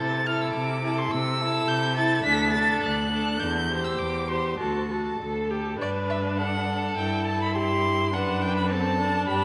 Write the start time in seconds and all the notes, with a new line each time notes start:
Already playing: A4
0.00 C3 E4 A6
0.26 E4 A4 F6
0.42 E6
0.54 C3 D6
0.83 E4 A4
0.98 C6
1.11 C3 E6
1.39 E4 A4
1.68 C3 G6
1.96 E4 A4 A6
2.24 D2 D4 A4 B6
2.53 D4 A4 A6
2.83 D2 F#6
3.11 D4 A4
3.40 E2 G6
3.70 G4 C5
3.84 E6
3.99 E2 D6
4.28 G4 C5 C6
4.59 D2 F#4 A4 A5
4.90 F#4 A4
5.19 D2 A4
5.50 G4 A4
5.79 G2 D4 B4 D5
6.10 E5
6.38 A4 F#5
6.98 G2 E4 G5
7.27 A5
7.43 B5
7.56 G4 C6
8.13 F#2 D4 B4 F#5
8.42 G5
8.56 B5
8.71 C4 A4 A5
9.01 D4
9.28 G2 G4 B5